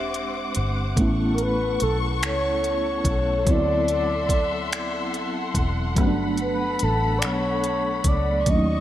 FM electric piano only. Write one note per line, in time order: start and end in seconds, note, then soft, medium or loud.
0.00 0.96 G#3 medium
0.00 0.93 C4 soft
0.00 0.94 D4 soft
0.00 0.95 G4 medium
0.96 3.43 A3 medium
0.96 3.44 B3 medium
0.96 3.45 C#4 medium
1.01 3.45 E4 medium
3.45 5.92 F#3 medium
3.45 5.93 B3 soft
3.45 5.94 C4 medium
3.51 5.95 E4 medium
5.95 8.42 F#3 medium
5.95 8.43 A3 medium
5.95 8.44 B3 medium
6.01 6.05 C#4 medium
6.07 8.48 D4 medium
8.46 8.80 F#3 medium
8.46 8.80 A3 medium
8.46 8.80 C#4 soft
8.46 8.55 D4 soft
8.55 8.80 D#4 medium